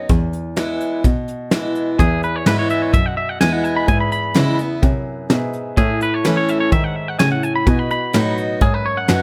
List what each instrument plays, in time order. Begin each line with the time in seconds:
0.09 steel-string acoustic guitar E2, cello E2, kick, closed hi-hat
0.33 closed hi-hat
0.56 steel-string acoustic guitar E3 G#3 B3 E4, snare, closed hi-hat
0.81 closed hi-hat
1.04 cello B2, steel-string acoustic guitar B2, kick, closed hi-hat
1.28 closed hi-hat
1.51 steel-string acoustic guitar E3 G#3 B3 E4, snare, closed hi-hat
1.75 closed hi-hat
1.98 cello E2, steel-string acoustic guitar E2, upright piano G#4 B4 E5, clean electric guitar G#4, kick, closed hi-hat
2.23 clean electric guitar B4, closed hi-hat
2.36 clean electric guitar C#5
2.46 cello G#2, steel-string acoustic guitar E3 G#3 B3 E4, clean electric guitar B4, snare, closed hi-hat
2.59 clean electric guitar C#5
2.70 clean electric guitar E5, closed hi-hat
2.82 clean electric guitar C#5
2.93 cello F#2, steel-string acoustic guitar B2, clean electric guitar E5, kick, closed hi-hat
3.06 clean electric guitar F#5
3.17 clean electric guitar E5
3.29 clean electric guitar F#5
3.41 cello E2, steel-string acoustic guitar E3 G#3 B3 E4, clean electric guitar G#5, snare, closed hi-hat
3.53 clean electric guitar F#5
3.64 clean electric guitar G#5, closed hi-hat
3.76 clean electric guitar B5
3.87 cello G#2, upright piano G#4 B4 E5, clean electric guitar G#5, kick, closed hi-hat
4.00 clean electric guitar B5
4.12 clean electric guitar B5, closed hi-hat
4.34 cello C#3, steel-string acoustic guitar E3 G#3 B3 E4, snare, closed hi-hat
4.59 steel-string acoustic guitar B3 E4, closed hi-hat
4.83 steel-string acoustic guitar F#2, cello C3, kick, closed hi-hat
5.30 steel-string acoustic guitar G#2, cello B2, upright piano G#4 B4 E5, snare, closed hi-hat
5.53 closed hi-hat
5.77 cello A2, steel-string acoustic guitar A2, clean electric guitar G#4, upright piano A4 C#5 E5, kick, closed hi-hat
6.01 clean electric guitar B4, closed hi-hat
6.14 clean electric guitar C#5
6.25 steel-string acoustic guitar E3 A3 C#4 E4, cello E3, clean electric guitar B4, snare, closed hi-hat
6.37 clean electric guitar C#5
6.48 clean electric guitar E5, closed hi-hat
6.60 clean electric guitar C#5
6.72 steel-string acoustic guitar G#2, cello D#3, clean electric guitar E5, kick, closed hi-hat
6.84 clean electric guitar F#5
6.96 clean electric guitar E5
7.08 clean electric guitar F#5
7.19 steel-string acoustic guitar A2, cello C#3, clean electric guitar G#5, snare, closed hi-hat
7.32 clean electric guitar F#5
7.43 clean electric guitar G#5, closed hi-hat
7.56 clean electric guitar B5
7.66 cello B2, upright piano F#4 B4 D#5, clean electric guitar G#5, kick, closed hi-hat
7.79 clean electric guitar B5
7.91 clean electric guitar B5, closed hi-hat
8.13 cello A2, steel-string acoustic guitar F#3 B3 D#4 F#4, snare, closed hi-hat
8.38 closed hi-hat
8.61 steel-string acoustic guitar F#2, cello G#2, clean electric guitar G#4, kick, closed hi-hat
8.74 clean electric guitar B4
8.86 clean electric guitar C#5
8.97 clean electric guitar F#5
9.08 cello F#2, steel-string acoustic guitar F#3 B3 D#4 F#4, upright piano F#4 B4 F#5, snare, closed hi-hat